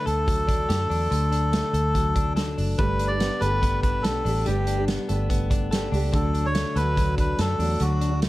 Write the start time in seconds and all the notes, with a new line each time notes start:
Already playing: D3 A3 D4
0.06 D2 A4, closed hi-hat
0.27 F#3, kick, closed hi-hat
0.47 D4, kick, closed hi-hat
0.69 F#2 G4, snare, closed hi-hat
0.80 A4
0.90 E2 D4, open hi-hat
1.11 D2 D3, closed hi-hat
1.32 D4, closed hi-hat
1.53 A3, snare, closed hi-hat
1.73 D2 A4, closed hi-hat
1.94 F#3, kick, closed hi-hat
2.16 D4, kick, closed hi-hat
2.36 A4, snare, closed hi-hat
2.58 F#1 D4, open hi-hat
2.78 G1 G3 A3 D4 G4 B4, kick, closed hi-hat
2.99 D4, closed hi-hat
3.07 B4 D5
3.12 D4 G4
3.20 B3, snare, closed hi-hat
3.40 G1 A3 D4 G4 A4 B4, closed hi-hat
3.62 B3, kick, closed hi-hat
3.82 D4 B4, kick, closed hi-hat
4.02 B1 A3 D4 A4, snare, closed hi-hat
4.06 G4 B4
4.25 A1 A3 D4 G4 B4, open hi-hat
4.46 G1 G3 A3 D4 G4 B4, closed hi-hat
4.67 D4, closed hi-hat
4.77 D4 G4 B4
4.88 B3, snare, closed hi-hat
5.09 G1 A3 D4 G4 A4 B4, closed hi-hat
5.30 B3, kick, closed hi-hat
5.50 D4, kick, closed hi-hat
5.71 A3 D4 G4 A4 B4, snare, closed hi-hat
5.92 C#2 A3 D4 G4 B4, open hi-hat
6.13 D2 D3 F#3 A3 D4 F#4 A4, kick, closed hi-hat
6.34 D4, closed hi-hat
6.46 A3 D4 F#4 C#5
6.55 A3, snare, closed hi-hat
6.76 D2 F#3 A3 D4 F#4 A4 B4, closed hi-hat
6.97 F#3, kick, closed hi-hat
7.18 D4 B4, kick, closed hi-hat
7.38 F#2 F#3 A3 D4 F#4 A4, snare, closed hi-hat
7.59 E2 F#3 A3 D4 F#4, open hi-hat
7.79 D2 D3 F#3 A3 D4 F#4, closed hi-hat
8.01 D4, closed hi-hat
8.11 A3 D4 F#4
8.22 A3, snare, closed hi-hat